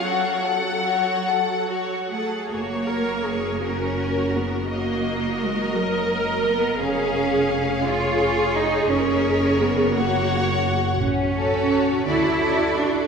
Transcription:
X:1
M:6/8
L:1/16
Q:3/8=57
K:F#m
V:1 name="Violin section"
f8- f2 z2 | [K:F#] A12 | d12 | e6 c6 |
c6 f6 | [K:F#m] z2 c4 d2 d4 |]
V:2 name="Violin section"
[Fc]2 [Af]2 [Fc]2 [Af]2 [Fc]2 [Af]2 | [K:F#] c6 A6 | A12 | G6 G6 |
A6 c6 | [K:F#m] z2 A4 A2 A4 |]
V:3 name="Viola section"
F,8- F,3 z | [K:F#] F2 A2 G2 F6 | F6 A6 | G6 G6- |
G6 F6 | [K:F#m] z2 F4 F2 F4 |]
V:4 name="Cello section"
A6 A2 F2 [A,G]2 | [K:F#] A,6 C4 B,2 | A,4 G,2 F,4 B,2 | C6 E4 D2 |
C4 B,2 A,4 z2 | [K:F#m] C6 E4 D2 |]
V:5 name="Double bass section" clef=bass
z12 | [K:F#] F,,,12- | F,,,12 | E,,,12 |
F,,,12 | [K:F#m] A,,,6 D,,6 |]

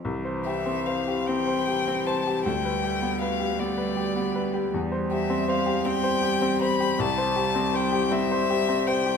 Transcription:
X:1
M:6/8
L:1/16
Q:3/8=53
K:C
V:1 name="Violin"
z2 e2 f2 g4 a2 | g4 f2 d6 | z2 e2 f2 g4 b2 | a4 g2 e4 g2 |]
V:2 name="Grand piano"
C,, c G C c G C c G C c G | D,, B G B, B G B, B G B, B G | E,, c G C c G C c G C c G | C,, c G C c G C c G C c G |]
V:3 name="Cello" clef=bass
E,6 E,6 | G,6 G,6 | G,6 G,6 | G,6 G,6 |]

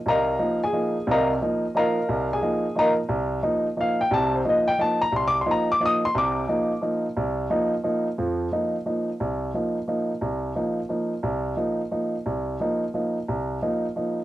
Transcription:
X:1
M:3/4
L:1/8
Q:"Swing" 1/4=177
K:Cdor
V:1 name="Grand piano"
[Befb]3 [_A_a]3 | [Befb] z3 [Befb]2- | [Befb] [_A_a]3 [Befb] z | z4 f g |
a c e g a b | (3c' d' c' b d' e' c' | d'4 z2 | z6 |
z6 | z6 | z6 | z6 |
z6 | z6 |]
V:2 name="Grand piano"
C,,2 [F,B,E] z [F,B,E] z | [C,,C,]2 [F,B,E] z [F,B,E] z | C,,2 [F,B,E] z [F,B,E] z | C,,2 [F,B,E] z [F,B,E] z |
[C,,C,]2 [F,B,E] z [F,B,E] z | C,,2 [F,B,E] z [F,B,E] z | [C,,C,]2 [F,B,E] z [F,B,E] z | C,,2 [F,B,E] z [F,B,E] z |
[F,,F,]2 [F,B,E] z [F,B,E] z | C,,2 [F,B,E] z [F,B,E] z | C,,2 [F,B,E] z [F,B,E] z | C,,2 [F,B,E] z [F,B,E] z |
C,,2 [F,B,E] z [F,B,E] z | C,,2 [F,B,E] z [F,B,E] z |]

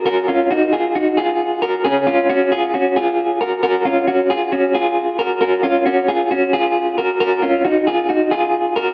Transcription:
X:1
M:4/4
L:1/8
Q:1/4=134
K:C#mix
V:1 name="Clean electric guitar"
[FA] [CE] [DF] [EG] [DF] [EG]2 [FA] | [CG] [CE] [CF] [EG] [CF] [EG]2 [FA] | [FA] [CE] [CF] [EG] [CF] [EG]2 [FA] | [FA] [CE] [CF] [EG] [CF] [EG]2 [FA] |
[FA] [CE] [DF] [EG] [DF] [EG]2 [FA] |]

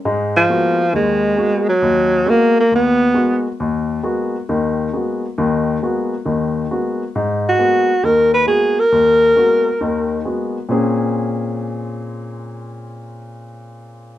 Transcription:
X:1
M:4/4
L:1/8
Q:"Swing" 1/4=135
K:Abdor
V:1 name="Alto saxophone"
z F,3 A,3 G,- | G,2 B, B, C3 z | z8 | z8 |
z G3 B c A B- | B6 z2 | z8 | z8 |]
V:2 name="Grand piano"
[A,,A,]2 [A,B,CG] z [E,,E,]2 [A,B,CG] z | E,,2 [A,B,CG] z E,,2 [A,B,CG] z | E,,2 [A,B,CG] z [E,,E,]2 [A,B,CG] z | [E,,E,]2 [A,B,CG] z [E,,E,]2 [A,B,CG] z |
A,,2 [A,B,CG] z [E,,E,]2 [A,B,CG] z | E,,2 [A,B,CG] z [E,,E,]2 [A,B,CG] z | [B,,B,=CDA]8- | [B,,B,=CDA]8 |]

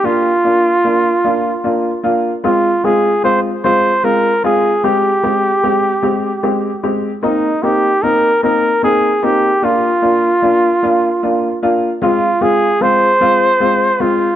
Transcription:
X:1
M:6/8
L:1/8
Q:3/8=50
K:Bbmix
V:1 name="Flugelhorn"
F4- F z | F A c c B A | G4- G z | E G B B A G |
F4- F z | F A c3 F |]
V:2 name="Upright piano"
[B,DF] [B,DF] [B,DF] [B,DF] [B,DF] [B,DF] | [A,CF] [A,CF] [A,CF] [A,CF] [A,CF] [A,CF] | [A,CG] [A,CG] [A,CG] [A,CG] [A,CG] [A,CG] | [B,CE] [B,CE] [B,CE] [B,CE] [B,CE] [B,CE] |
[B,DF] [B,DF] [B,DF] [B,DF] [B,DF] [B,DF] | [A,CF] [A,CF] [A,CF] [A,CF] [A,CF] [A,CF] |]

